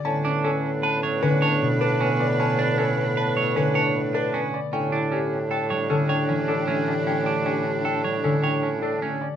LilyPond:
<<
  \new Staff \with { instrumentName = "Grand piano" } { \time 6/4 \key a \mixolydian \tempo 4 = 154 a''8 r8 a'8 r8 a''8 r8 b'8 a''8 r8 b'8 r8 d''8 | a''8 r8 a'8 r8 a''8 r8 b'8 a''8 r8 b'8 r8 d''8 | g''8 r8 g'8 r8 g''8 r8 a'8 g''8 r8 a'8 r8 d''8 | g''8 r8 g'8 r8 g''8 r8 a'8 g''8 r8 a'8 r8 d''8 | }
  \new Staff \with { instrumentName = "Violin section" } { \time 6/4 \key a \mixolydian <b b'>1.~ | <b b'>1~ <b b'>4. r8 | <d' g'>1.~ | <d' g'>1~ <d' g'>4. r8 | }
  \new Staff \with { instrumentName = "Clean electric guitar" } { \time 6/4 \key a \mixolydian cis'8 d'8 cis'8 r8 b'8 cis''8 cis'8 cis''8 r8 d'8 cis'8 r8 | cis'8 d'8 cis'8 r8 b'8 cis''8 cis'8 cis''8 r8 d'8 cis'8 r8 | cis'8 d'8 cis'8 r8 a'8 cis''8 cis'8 cis''8 cis'8 d'8 cis'8 r8 | cis'8 d'8 cis'8 r8 a'8 cis''8 cis'8 cis''8 cis'8 d'8 cis'8 r8 | }
  \new Staff \with { instrumentName = "Oboe" } { \time 6/4 \key a \mixolydian d'1.~ | d'1~ d'4. r8 | d'1.~ | d'1~ d'4. r8 | }
  \new Staff \with { instrumentName = "Harp" } { \clef bass \time 6/4 \key a \mixolydian r8 cis'2 a8 d4 b,4 b4~ | b2~ b8 a8 d2 b4 | r8 e'2 g8 d4 e4 a4~ | a2~ a8 g8 d2 a4 | }
  \new Staff \with { instrumentName = "Bassoon" } { \clef bass \time 6/4 \key a \mixolydian a,1.~ | a,1. | a,1.~ | a,1. | }
>>